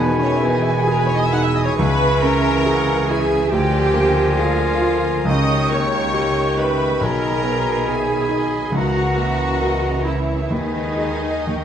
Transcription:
Already playing: double bass section E1, cello section E2, grand piano E2 B3 D#4 G#4, bassoon D#3, french horn section D#3 G#4, viola section B3, violin section B4, clarinet G#5, oboe B5
0.00 grand piano B2, violin section G#5
0.20 viola section C#4, flute section C#5, violin section C#5
0.37 viola section E4, flute section E5, violin section E5
0.43 grand piano B3
0.50 viola section D#4, flute section D#5, violin section D#5
0.62 viola section E4, flute section E5
0.67 violin section E5
0.74 viola section F#4, flute section F#5, violin section F#5
0.82 viola section G#4, flute section G#5, violin section G#5
0.87 grand piano G#4
0.92 viola section A#4, flute section A#5, violin section A#5
1.00 viola section B4, flute section B5, violin section B5
1.07 viola section C#5, flute section C#6, violin section C#6
1.16 viola section D#5, violin section D#6, flute section D#6
1.24 viola section E5, violin section E6
1.29 grand piano D#4, viola section F#5, flute section E6
1.36 violin section F#6, flute section F#6
1.44 viola section E5, violin section E6
1.50 flute section E6
1.55 viola section D#5
1.59 violin section D#6, flute section D#6
1.66 viola section C#5
1.71 violin section C#6, flute section C#6
1.78 double bass section C#2, grand piano C#2, cello section C#3, french horn section E3, bassoon E3, viola section B4, violin section E5, oboe C#6
1.82 violin section B5, flute section B5
2.23 grand piano C#4, viola section A#4, violin section A#5, flute section A#5
2.66 grand piano G#4, violin section F#5
3.08 grand piano E4, viola section G#4, violin section E5 G#5
3.13 flute section G#5
3.50 grand piano D2, double bass section D2, cello section D3, bassoon F3, french horn section F3 A#4, viola section G4, violin section D5 G5, flute section G5, clarinet G#5, oboe A#5
3.94 grand piano A#3, violin section C5
4.39 viola section F4, grand piano G#4, violin section A#4 F5, flute section F5
4.81 grand piano F4
5.25 grand piano C#2, double bass section C#2, bassoon D#3, violin section D#6
5.29 cello section C#3, french horn section D#3 G4, violin section C#5, viola section D#5, clarinet G5, oboe C#6, flute section D#6
5.70 grand piano A#3, viola section C#5, violin section C#6, flute section C#6
6.13 grand piano G4, violin section D#5
6.57 grand piano D#4, viola section B4, violin section E5 B5, flute section B5
7.01 grand piano B1, double bass section B1, cello section B2, french horn section G#4, viola section A#4, violin section D#5 A#5, clarinet G#5, flute section A#5, oboe B5
7.44 grand piano B3
7.87 grand piano G#4, violin section E5 G#5, flute section G#5
7.92 viola section G#4
8.29 grand piano D#4, violin section D#5
8.72 grand piano C#2, double bass section C#2, cello section C#3, french horn section E3 A#4, violin section F#5, flute section F#5
8.76 bassoon E3, viola section F#4, clarinet A#5, oboe A#5
9.17 grand piano A#3, violin section E5
9.62 grand piano A#4, violin section D#5
10.05 grand piano E4, viola section E4, violin section C#5 E5, flute section E5
10.50 grand piano D#2, double bass section D#2, cello section D#3, bassoon D#3, french horn section G#3 B4, viola section D#4, violin section B4 D#5, flute section D#5, clarinet G#5, oboe B5
10.96 grand piano D#4 G#4
11.02 violin section D#5
11.47 grand piano D#2, double bass section D#2, cello section D#3, french horn section G3 A#4, violin section G5, clarinet G5, oboe C#6

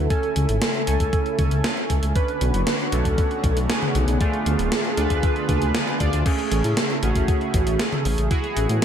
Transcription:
Already playing: analog synth pad A3, soft synth lead A4
0.10 analog synth pad C#3 E4, analog polysynth C#4 A4 G#5, kick, closed hi-hat
0.23 closed hi-hat
0.36 detuned saw bass C#2, closed hi-hat
0.49 detuned saw bass G#1, closed hi-hat
0.62 snare, closed hi-hat
0.74 closed hi-hat
0.87 detuned saw bass C#2, analog polysynth C#4 A4 G#5, closed hi-hat
1.00 detuned saw bass C#2, kick, closed hi-hat
1.13 kick, closed hi-hat
1.26 closed hi-hat
1.39 detuned saw bass C#2, analog polysynth C#4 A4 G#5, kick, closed hi-hat, mid tom
1.51 detuned saw bass C#2, closed hi-hat
1.64 snare, closed hi-hat
1.77 closed hi-hat
1.90 detuned saw bass C#2, kick, closed hi-hat
2.03 detuned saw bass C#2, closed hi-hat
2.15 analog synth pad D3 B3 F#4 C#5, analog polysynth C#4 D4 B4, soft synth lead B4, kick, closed hi-hat
2.28 closed hi-hat
2.41 detuned saw bass B1, closed hi-hat
2.54 detuned saw bass F#1, closed hi-hat
2.67 snare, closed hi-hat
2.80 closed hi-hat
2.92 detuned saw bass B1, analog polysynth A3 C#4 D4, soft synth lead A4, closed hi-hat
3.05 detuned saw bass B1, kick, closed hi-hat
3.18 kick, closed hi-hat
3.31 closed hi-hat
3.44 detuned saw bass B1, kick, closed hi-hat
3.57 detuned saw bass B1, closed hi-hat
3.69 soft synth lead G#4, snare, closed hi-hat
3.82 closed hi-hat, mid tom
3.95 detuned saw bass B1, closed hi-hat
4.08 detuned saw bass B1, closed hi-hat
4.21 analog synth pad D3 A3 F4, analog polysynth A3 D4 F4, kick, closed hi-hat
4.33 closed hi-hat
4.46 detuned saw bass D2, closed hi-hat
4.59 detuned saw bass D1, closed hi-hat
4.72 snare, closed hi-hat
4.85 closed hi-hat
4.97 detuned saw bass D2, analog polysynth D4 F4 B4, closed hi-hat
5.10 detuned saw bass D2, kick, closed hi-hat
5.23 kick, closed hi-hat
5.36 closed hi-hat
5.49 detuned saw bass D2, analog polysynth D4 F4 B4, kick, closed hi-hat, mid tom
5.62 detuned saw bass D2, closed hi-hat
5.75 snare, closed hi-hat
5.87 closed hi-hat
6.00 detuned saw bass D2, analog polysynth D4 F4 D5, kick, closed hi-hat
6.13 detuned saw bass D2, closed hi-hat
6.26 analog synth pad C#3 A3 E4, analog polysynth A3 C#4 G#4, soft synth lead G#4, kick, closed hi-hat, crash
6.39 closed hi-hat
6.52 detuned saw bass A1, closed hi-hat
6.64 detuned saw bass A2, closed hi-hat
6.77 snare, closed hi-hat
6.90 closed hi-hat
7.03 detuned saw bass A1, analog polysynth A3 C#4 G#4, soft synth lead F#4, closed hi-hat
7.16 detuned saw bass A1, kick, closed hi-hat
7.28 kick, closed hi-hat
7.41 closed hi-hat
7.54 detuned saw bass A1, kick, closed hi-hat
7.67 detuned saw bass A1, closed hi-hat
7.79 soft synth lead G#4, snare, closed hi-hat
7.92 closed hi-hat, mid tom
8.05 detuned saw bass A1, open hi-hat
8.18 detuned saw bass A1, closed hi-hat
8.31 analog synth pad E3 B3 F#4, analog polysynth E4 F#4 G#4, kick, closed hi-hat
8.44 closed hi-hat
8.57 detuned saw bass A1, closed hi-hat
8.69 detuned saw bass A2, closed hi-hat

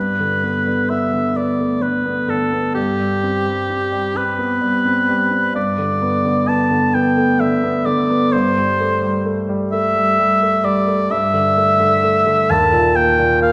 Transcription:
Already playing: grand piano G2, oboe B4
0.20 grand piano D3
0.43 grand piano B3
0.67 grand piano D3
0.90 grand piano B3, oboe E5
1.13 grand piano D3
1.36 grand piano B3, oboe D5
1.59 grand piano A3
1.82 grand piano D3, oboe B4
2.06 grand piano B3
2.28 grand piano D3, oboe A4
2.53 grand piano B3
2.75 grand piano G2, oboe G4
3.00 grand piano G3
3.24 grand piano C4
3.46 grand piano G3
3.70 grand piano C4
3.92 grand piano G3
4.15 grand piano C4, oboe B4
4.38 grand piano B3
4.61 grand piano G3
4.85 grand piano C4
5.09 grand piano G3
5.31 grand piano C4
5.54 grand piano G2, oboe D5
5.78 grand piano D3
6.02 grand piano B3
6.25 grand piano D3
6.48 grand piano B3, oboe A5
6.71 grand piano D3
6.94 grand piano B3, oboe G5
7.17 grand piano A3
7.40 grand piano D3, oboe E5
7.64 grand piano B3
7.86 grand piano D3, oboe D5
8.10 grand piano B3
8.32 grand piano G2, oboe C5
8.57 grand piano G3
8.80 grand piano A3
9.03 grand piano G3
9.25 grand piano A3
9.49 grand piano G3
9.71 grand piano A3, oboe E5
9.96 grand piano G3
10.19 grand piano G3
10.42 grand piano A3
10.64 grand piano G3, oboe D5
10.87 grand piano A3
11.10 grand piano G2, oboe E5
11.34 grand piano D3
11.57 grand piano A3
11.80 grand piano D3
12.03 grand piano A3
12.26 grand piano D3
12.50 grand piano D#2, oboe A5
12.72 grand piano A#2
12.96 grand piano A#3, oboe G5
13.19 grand piano A#2
13.41 grand piano A#3, oboe F5

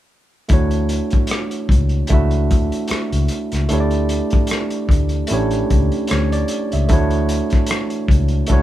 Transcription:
0.49 fingered electric bass D2, tine electric piano A3 D4 E4 F#4, kick, closed hi-hat
0.54 tine electric piano C#5
0.71 closed hi-hat
0.89 closed hi-hat
1.10 kick, closed hi-hat
1.27 closed hi-hat
1.31 cross-stick
1.51 closed hi-hat
1.69 fingered electric bass C#2, kick, closed hi-hat
1.89 closed hi-hat
2.07 fingered electric bass C#2, tine electric piano A3 D4, kick, closed hi-hat
2.11 tine electric piano E4 F#4 E5
2.31 closed hi-hat
2.51 fingered electric bass D2, kick, closed hi-hat
2.72 closed hi-hat
2.88 muted fingered electric bass stroke, cross-stick, closed hi-hat
3.12 fingered electric bass C#2, closed hi-hat
3.28 closed hi-hat
3.52 fingered electric bass C#2, cross-stick, closed hi-hat
3.69 fingered electric bass D2, tine electric piano A3 D4 E4 G4, closed hi-hat
3.74 tine electric piano C#5
3.80 tine electric piano D5
3.91 closed hi-hat
4.09 closed hi-hat
4.30 kick, closed hi-hat
4.47 closed hi-hat
4.51 cross-stick
4.70 closed hi-hat
4.89 fingered electric bass D2, kick, closed hi-hat
5.09 closed hi-hat
5.27 tine electric piano A3 C#4 E4, closed hi-hat
5.31 fingered electric bass A1, tine electric piano G4 C#5
5.36 tine electric piano D4
5.51 closed hi-hat
5.70 fingered electric bass C#2, kick, closed hi-hat
5.92 closed hi-hat
6.07 fingered electric bass D2, tine electric piano C#5, cross-stick, closed hi-hat
6.32 tine electric piano D5, closed hi-hat
6.48 closed hi-hat
6.72 fingered electric bass C#2, tine electric piano E5, closed hi-hat
6.88 fingered electric bass D2, tine electric piano A3 D4 E4 F#4, kick, closed hi-hat
6.93 tine electric piano C#5
7.10 closed hi-hat
7.29 closed hi-hat
7.50 kick, cross-stick, closed hi-hat
7.66 closed hi-hat
7.71 cross-stick
7.90 closed hi-hat
8.08 fingered electric bass C#2, kick, closed hi-hat
8.28 closed hi-hat
8.47 tine electric piano A3 D4 E4, kick, closed hi-hat
8.51 fingered electric bass C#2, tine electric piano F#4 C#5

